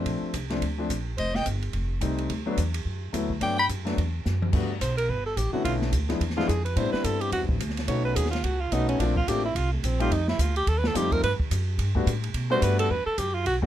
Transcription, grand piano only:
Already playing: F3 A3 C4 D4
0.50 F3 A3 C4 D4
0.78 F3 A3 C4 D4
2.01 G3 A3 C4 D#4
2.46 F#3 A3 B3 D4
3.13 F#3 A3 B3 E4
3.40 F#3 A3 B3 D4
3.85 F#3 A3 B3 D4
4.52 G3 A3 B3 D4 F#4
5.53 D3 A3 B3 C#4 E4
6.09 F3 G#3 B3 D4 E4
6.36 F3 G#3 B3 D4 E4
6.76 G3 B3 C4 D4 E4
7.88 A3 B3 C#4 D#4 F#4
8.72 A3 B3 C#4 D#4 F#4
9.00 A3 A#3 C4 D4 F4
9.27 A3 A#3 C4 D4 F4
10.00 G3 A3 C4 D#4 G4
10.94 G3 A3 C4 D#4 F4
11.95 G3 A3 B3 D4 F#4
12.50 G3 A3 B3 D4 F#4
13.62 G3 A3 B3

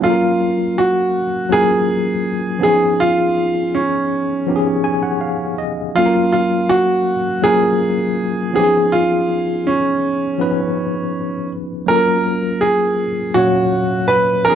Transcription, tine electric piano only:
0.01 F#3 A#3 C#4 A4 F5
0.10 A#4
1.49 F#3 A#3 C#4 F4 A#4
2.59 F3 B3 C#4 D#4
2.63 G#4
4.46 F3 B3 C#4 D#4 G4
4.56 G#4
4.84 G#5
5.03 F#5
5.21 F5
5.58 D#5
5.95 F#3 A#3 C#4 A4 F5
6.06 A#4
7.42 F#3 A#3 C#4 F4 A#4
8.53 F3 B3 C#4 D#4
8.57 G4
8.63 G#4
10.38 F3 B3 C#4 D#4 B4
11.86 F#3 A#3 C#4 F4 A4
11.96 A#4
13.35 A#2 F#3 C#4 C#5 F5
14.46 F3 B3 C#4 D#4 G#4

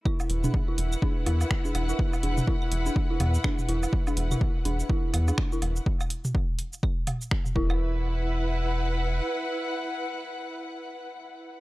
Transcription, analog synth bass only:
0.30 E1
0.78 E1
1.27 E2
1.75 E1
2.23 E1
2.72 E1
3.20 E2
3.69 E1
4.17 E1
4.65 E1
5.14 E2
5.62 E1
7.56 E1

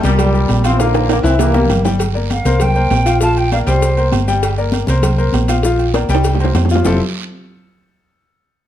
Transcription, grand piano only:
0.04 G3 G4 A#4
0.34 G3 G4 A#4
0.65 F3 F4 F5
0.80 F3 F4 F5
1.09 A#3 A#4 D5
1.23 E3 E4 E5
1.54 G3 G4 A#4
1.85 G3 G4 G5
2.14 A#3 A#4 D5
2.45 A#3 A#4 C5
2.75 A#3 A#4 C5
3.05 F3 F4 F5
3.22 F3 F4 F5
3.52 A#3 A#4 D5
3.67 G3 G4 G5
3.97 A#3 A#4 C5
4.28 G3 G4 G5
4.58 A#3 A#4 D5
4.89 A#3 A#4 C5
5.18 A#3 A#4 C5
5.49 F3 F4 F5
5.65 F3 F4 F5
5.94 A#3 A#4 D5
6.09 G3 G4 G5
6.40 A#3 A#4 C5
6.71 F3 F4 F5
6.85 F3 C4 E4 F4 G4 A4

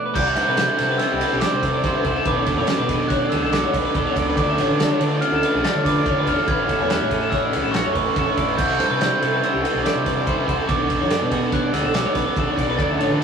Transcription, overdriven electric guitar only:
0.14 C3 G3 C4 E4
0.36 G3 C4 E4
0.57 C3 G3 C4 E4
0.78 G3 C4 E4
1.21 G3 C4 E4
1.41 C3 G3 C4 E4
1.84 C3 G3 C4 E4
2.04 G3 C4 E4
2.26 B2 F#3 B3 D4
2.46 F#3 B3 D4
2.67 B2 F#3 B3 D4
2.89 F#3 B3 D4
3.32 F#3 B3 D4
3.52 B2 F#3 B3 D4
3.94 B2 F#3 B3 D4
4.16 F#3 B3 D4
4.37 D3 F3 A3 D4
4.57 F3 A3 D4
4.79 D3 F3 A3 D4
5.00 F3 A3 D4
5.42 F3 A3 D4
5.63 D3 F3 A3 D4
6.04 D3 F3 A3 D4
6.26 F3 A3 D4
6.46 A2 E3 A3 C#4 E4
6.67 A3 C#4 E4
6.88 E3 A3 C#4 E4
7.09 A3 C#4 E4
7.52 A3 C#4 E4
7.73 A2 E3 A3 C#4 E4
8.16 A2 E3 A3 C#4 E4
8.36 A3 C#4 E4
8.56 C3 E3 G3 C4 E4
8.77 G3 C4 E4
9.00 E3 G3 C4 E4
9.20 G3 C4 E4
9.63 G3 C4 E4
9.84 C3 E3 G3 C4 E4
10.26 C3 E3 G3 C4 E4
10.46 G3 C4 E4
10.68 B2 F#3 B3 D4 F#4
10.88 B3 D4 F#4
11.11 F#3 B3 D4 F#4
11.31 B3 D4 F#4
11.73 B3 D4 F#4
11.94 B2 F#3 B3 D4 F#4
12.37 B2 F#3 B3 D4 F#4
12.58 B3 D4 F#4
12.78 D3 F3 A3 D4 A4
12.99 A3 D4 A4
13.20 F3

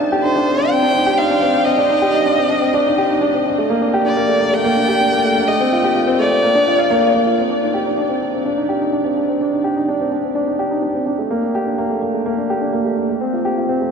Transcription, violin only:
0.23 C5
0.70 G5
1.18 F5
1.65 D#5
4.06 D5
4.53 G5
5.48 D#5
6.19 D5

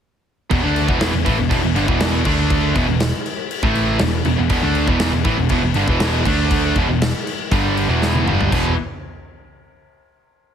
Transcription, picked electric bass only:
0.50 E1
0.64 D2
0.88 E1
1.13 E1
1.26 A1
1.40 E1
1.51 E1
1.64 E1
1.76 G1
1.88 E1
2.25 D2
2.76 E1
2.88 E1
3.63 A1
4.00 E1
4.26 E1
4.38 E1
4.50 E1
4.63 D2
4.87 E1
5.13 E1
5.25 A1
5.38 E1
5.50 E1
5.62 E1
5.75 G1
5.87 E1
6.25 D2
6.76 E1
6.88 E1
7.51 G1
7.88 E1
8.26 G1
8.52 E1

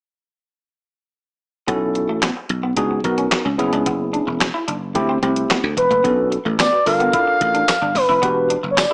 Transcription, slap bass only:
1.68 B1
2.09 A1
2.50 B1
2.77 C#2
3.04 B1
3.45 C#2
3.59 F#1
3.73 C#2
3.86 F#1
4.27 E1
4.68 F#1
4.95 D2
5.23 C2
5.64 D2
5.77 E1
5.91 F#1
6.04 B1
6.46 A1
6.86 G1
7.41 A1
7.82 G1
7.95 G1
8.09 F1
8.23 E1
8.64 F#1

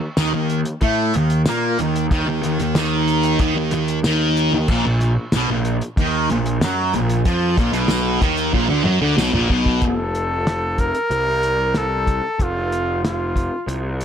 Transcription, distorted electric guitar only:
0.18 D#3
0.34 D#3
0.83 A3
1.17 D#3
1.48 A#3
1.80 D#3
2.12 D#3
2.30 D#3
2.45 D#3
2.62 D#3
2.78 D#3
3.41 D#3
3.58 D#3
3.74 D#3
4.06 D#3
4.54 D#3
4.71 A#2
4.86 A#2
5.35 B2
5.51 A#2
6.00 D#3
6.31 A#2
6.64 F#3
6.95 A#2
7.26 F3
7.58 A#2
7.74 B2
8.23 D#3
8.54 A#2
8.69 D3
8.85 F#3
9.01 D3
9.18 B2
9.34 A#2
9.51 B2

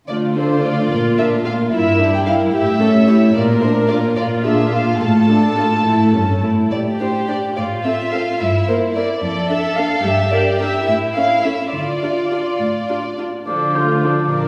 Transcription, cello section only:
0.09 D3
0.92 A#2
1.73 G2
2.54 A2
3.35 A#2
4.17 A#2
5.01 A2
5.86 A2
6.14 G2
6.43 A2
6.72 A#2
7.57 A2
8.40 G2
9.23 F2
10.05 G2
10.88 A2
11.72 D3
12.59 A2
13.47 D3
14.32 A#2

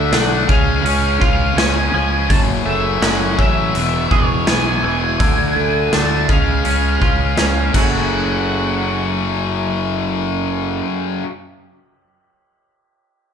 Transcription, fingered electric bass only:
0.12 B1
0.49 C#2
0.83 C#2
1.22 C#2
1.56 C#2
1.93 C#2
2.30 F#1
2.65 F#1
3.02 F#1
3.39 A1
3.75 E1
4.11 E1
4.46 B1
4.83 E1
5.20 D2
5.56 D2
5.93 D2
6.29 C#2
6.66 C#2
7.01 C#2
7.38 C#2
7.74 F#1

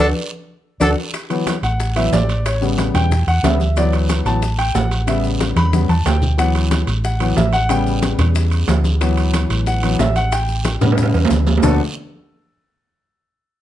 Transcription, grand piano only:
0.81 D4 F#4 A4
1.30 E3 F#3 B3
1.64 F#5
1.96 E3 F#3 B3 E5
2.13 D5
2.46 C#5
2.61 C#3 G3 B3
2.95 G5
3.28 F#5
3.44 C#3 G3 B3 E5
3.77 E3 F#3 B3 D5
4.26 E3 F#3 B3 A5
4.59 G5
4.75 F#5
5.07 C#3 G3 B3 E5
5.57 B5
5.73 C#3 G3 B3
5.90 A5
6.06 G5
6.38 E3 F#3 B3 F#5
7.05 F#5
7.20 E3 F#3 B3
7.37 E5
7.53 F#5
7.69 C#3 G3 B3 G5
9.01 E3 F#3 B3
9.67 F#5
9.83 E3 F#3 B3
10.00 E5
10.16 F#5
10.32 G5
10.81 C#3 G3 B3
11.62 D3 A3 B3 D4 F#4 A4

